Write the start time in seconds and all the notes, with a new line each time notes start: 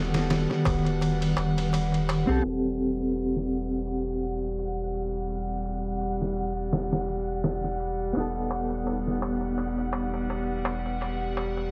Already playing: D#1 D#3 G3 B3 F#4 A4 B4 F#5
0.14 snare, ride, darbuka tek
0.30 snare, ride, darbuka tek
0.50 snare, darbuka tek
0.65 D#1, kick, ride, darbuka tek
0.85 ride, darbuka tek
1.01 ride, darbuka tek
1.21 ride, darbuka tek
1.37 D#1, ride, darbuka tek
1.57 ride, darbuka tek
1.73 ride, darbuka tek
1.92 ride, darbuka tek
2.09 ride, darbuka tek
2.27 B1 C4 G4 A4, darbuka tek
2.42 E1 G3 C4 F#5, ride
2.49 A4
2.65 ride
2.81 ride
3.16 ride
3.37 snare
3.52 ride
3.87 ride
4.23 ride
4.59 ride
4.94 ride
5.30 ride
5.66 ride
6.01 ride
6.22 snare
6.37 ride
6.57 ride
6.72 snare, ride
6.92 snare, ride
7.08 ride
7.44 snare, ride
7.64 snare
7.80 ride
8.13 E1 B3 D#4, ride, darbuka tek
8.20 A4
8.36 ride
8.51 ride, darbuka tek
8.70 darbuka tek
8.87 ride, darbuka tek
9.07 snare
9.22 ride, darbuka tek
9.41 darbuka tek
9.58 ride, darbuka tek
9.78 darbuka tek
9.93 ride, darbuka tek
10.14 darbuka tek
10.30 ride, darbuka tek
10.65 ride, darbuka tek
10.86 darbuka tek
11.01 ride, darbuka tek
11.37 ride, darbuka tek
11.57 darbuka tek